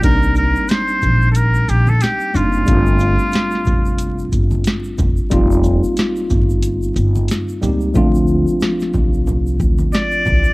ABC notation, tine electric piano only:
X:1
M:4/4
L:1/8
Q:"Swing 16ths" 1/4=91
K:Cdor
V:1 name="Tine electric piano"
[G,B,CDE]6- [G,B,CDE] [G,B,CDE] | [G,A,CDF]8 | [G,B,CEF]6- [G,B,CEF] [G,B,CEG] | [F,A,CDF]8 |]